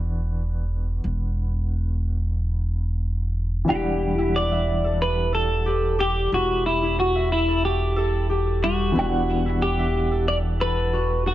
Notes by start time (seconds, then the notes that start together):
Already playing: E1 E3 B3 D4 F#4
1.04 E1
3.65 E1 E3 D4 E4
3.69 G3 G4 F#5
4.18 E4
4.36 D5
4.51 E5
4.84 A4
5.02 B4
5.33 A4
5.66 G4
5.99 G4
6.32 E1 E4 F#4
6.66 E4
6.82 E4
7.00 F#4
7.15 E5
7.32 E4
7.48 A4
7.65 G4
7.96 A4
8.29 G4
8.62 G3 F#4
8.92 E1 E3 B3 E4
8.96 D4 F#5
9.46 E4
9.62 G4
9.79 E5
10.11 A4
10.28 D5
10.60 A4 B4
10.93 F#4
11.26 F#4